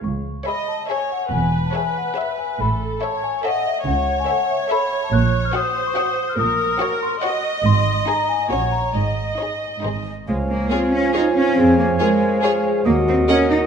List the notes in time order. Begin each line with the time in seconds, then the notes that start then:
0.04 C#2 C#6
0.46 G#4 C#5 D#5 E5 B5
0.68 A5
0.89 G#4 C#5 E5 G#5
1.12 F#5
1.32 E1 E2 B4 G#5
1.66 A5
1.75 G#4 C#5 E5 G#5
1.98 F#5
2.16 G#4 C#5 E5
2.38 G#5
2.60 A1 A2 A4 B5
3.01 A4 C#5 E5 A5
3.23 G#5
3.44 A4 C#5 D#5 E5 F#5
3.66 E5
3.86 C#2 C#3 C#5 F#5
4.20 G#5
4.28 A4 C#5 E5 F#5
4.50 E5
4.70 A4 C#5 E5 B5
5.04 A5
5.12 A#1 A#2 F#6
5.45 F6
5.54 F#4 C5 C#5 F#5 D#6
5.87 C#6
5.97 F#4 C#5 F#5 D#6
6.29 F6
6.39 A#1 A#2 A#4 D#6
6.80 F#4 C#5 F#5 C#6
7.03 C6
7.23 F#4 C#5 D#5 F#5 C#6
7.65 G#1 G#2 C6
8.08 D#4 G#4 G#5 A#5
8.29 G#5
8.50 A#1 A#2 C#4 F#4 C#5 F#5
8.72 A#5
8.94 G#1 G#2 D#5
9.39 D#4 G#4 C#5
9.83 G#1 G#2 D#4 G#4 C5
10.28 C#2 F3 G#3 C#5 F5 G#5
10.50 A#3
10.71 C4 F4 G#4 C#5
10.92 C#4
11.13 D#4 F4 G#4 C#5
11.36 C#4
11.57 F2 C4 G#4
11.79 A#3
11.99 G#3 F4 G#4 A#4 C#5
12.43 F4 G#4 C#5
12.85 D#2 F#3 A#3 F#4 A#4 D#5 F#5
13.07 C4
13.29 C#4 A#4 D#5 F#5
13.50 D#4